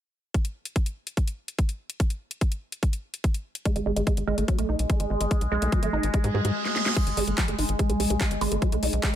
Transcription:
0.34 kick, closed hi-hat
0.45 closed hi-hat
0.65 closed hi-hat
0.76 kick, closed hi-hat
0.86 closed hi-hat
1.07 closed hi-hat
1.17 kick, closed hi-hat
1.28 closed hi-hat
1.48 closed hi-hat
1.59 kick, closed hi-hat
1.69 closed hi-hat
1.90 closed hi-hat
2.00 kick, closed hi-hat
2.10 closed hi-hat
2.31 closed hi-hat
2.41 kick, closed hi-hat
2.52 closed hi-hat
2.72 closed hi-hat
2.83 kick, closed hi-hat
2.93 closed hi-hat
3.14 closed hi-hat
3.24 kick, closed hi-hat
3.34 closed hi-hat
3.55 closed hi-hat
3.65 G#3, kick, closed hi-hat
3.76 G#1 G#3, closed hi-hat
3.86 G#1 G#3
3.96 G#1 G#3, closed hi-hat
4.07 G#3, kick, closed hi-hat
4.17 G#1, closed hi-hat
4.27 G#1 G#3
4.38 G#1 A3, closed hi-hat
4.48 F#3, kick, closed hi-hat
4.59 B1 A3, closed hi-hat
4.69 B1 D#4
4.79 B1, closed hi-hat
4.90 G#3, kick, closed hi-hat
5.00 G#1 G#3, closed hi-hat
5.10 G#1 G#3
5.21 G#1 G#3, closed hi-hat
5.31 G#3, kick, closed hi-hat
5.41 B1, closed hi-hat
5.52 B1 G#3
5.62 B1 A3, closed hi-hat
5.72 F#3, kick, closed hi-hat
5.83 G#1 A3, closed hi-hat
5.93 G#1 D#4
6.03 G#1, closed hi-hat
6.14 G#3, kick, closed hi-hat, reverse cymbal
6.24 G#2 G#3, closed hi-hat
6.34 G#2 G#3
6.45 G#2 G#3, closed hi-hat
6.65 snare
6.76 snare
6.86 snare
6.96 G#3, kick, closed hi-hat, crash
7.07 G#1, closed hi-hat
7.17 G#1 G#3, open hi-hat
7.27 G#1 A3, closed hi-hat
7.38 F#3, kick, clap, closed hi-hat
7.48 G#1 A3, closed hi-hat
7.59 G#1 D#4, open hi-hat
7.69 G#1, closed hi-hat
7.79 G#3, kick, closed hi-hat
7.90 B1 G#3, closed hi-hat
8.00 B1 G#3, open hi-hat
8.10 B1 G#3, closed hi-hat
8.21 G#3, kick, clap, closed hi-hat
8.31 G#1, closed hi-hat
8.41 G#1 G#3, open hi-hat
8.52 G#1 A3, closed hi-hat
8.62 F#3, kick, closed hi-hat
8.72 B1 A3, closed hi-hat
8.83 B1 D#4, open hi-hat
8.93 B1, closed hi-hat
9.03 G#3, kick, clap, closed hi-hat

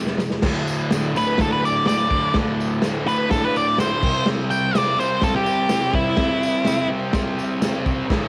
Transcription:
Already playing: F2 C3 F3
0.07 snare, tambourine
0.18 F2 C3, snare, tambourine
0.30 snare
0.42 D2 A2 D3, kick, snare, crash, tambourine
0.68 tambourine
0.91 D2 A2 D3, snare, tambourine, crash
1.15 D2 A2 D3 B4, tambourine
1.37 D2 A2 D3 A4, kick, snare, tambourine, crash
1.52 B4
1.65 D5, tambourine
1.86 D2 A2 D3 D5, snare, tambourine, crash
2.10 D2 A2 D3, kick
2.34 D2 A2 D3, kick, snare, tambourine, crash
2.60 tambourine
2.82 D2 A2 D3, snare, tambourine, crash
3.06 D2 A2 D3 B4, tambourine
3.30 D2 A2 D3 A4, kick, snare, tambourine, crash
3.44 B4
3.56 D5, tambourine
3.78 D2 A2 D3 C5, snare, tambourine, crash
4.02 C3 G3 C4, kick, crash
4.25 C3 G3 C4, snare, tambourine, crash
4.50 G5, tambourine
4.74 C3 G3 C4 D5, snare, tambourine, crash
4.98 C3 G3 C4 C5, tambourine
5.22 C3 G3 C4 A4, kick, snare, tambourine, crash
5.36 G4
5.46 tambourine
5.69 C3 G3 C4, snare, tambourine, crash
5.92 C3 G3 C4 E4, kick
6.17 C3 G3 C4, kick, snare, tambourine, crash
6.43 tambourine
6.64 C3 G3 C4, snare, tambourine, crash
6.89 C3 G3 C4
7.12 C3 G3 C4, kick, snare, tambourine, crash
7.39 tambourine
7.61 C3 G3 C4, snare, tambourine, crash
7.85 C3 G3 C4, kick, tambourine
8.08 D2 A2 D3, kick, snare, tambourine, crash

